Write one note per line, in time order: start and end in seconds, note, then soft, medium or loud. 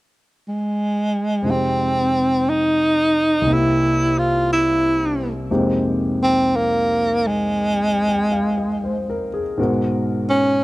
0.48 1.52 G#3 medium
1.42 3.46 F2 soft
1.42 3.43 C3 soft
1.42 3.47 G#3 soft
1.46 3.48 D#4 soft
1.46 3.49 G4 soft
1.50 2.51 C4 medium
2.49 3.55 D#4 medium
3.42 5.47 C2 soft
3.42 5.49 C3 soft
3.47 5.50 A#3 soft
3.47 5.52 E5 soft
3.53 4.20 E4 medium
3.53 5.50 G4 soft
4.19 4.50 F4 medium
4.53 5.32 E4 medium
5.51 9.59 F2 soft
5.51 9.59 C3 soft
5.51 9.58 G#3 soft
5.51 9.59 A#3 soft
5.51 9.60 D#4 soft
5.51 9.59 G4 soft
6.23 6.57 C4 medium
6.56 7.28 A#3 medium
7.27 9.29 G#3 medium
8.08 8.38 G5 soft
8.32 8.67 F5 soft
8.58 9.06 D#5 soft
8.84 9.27 C5 soft
9.10 9.40 A#4 soft
9.34 9.69 G#4 soft
9.58 10.64 G#2 soft
9.58 10.64 B2 soft
9.58 10.64 G#3 soft
9.58 10.64 F#4 soft
9.58 10.64 A#4 soft
10.30 10.64 C#4 medium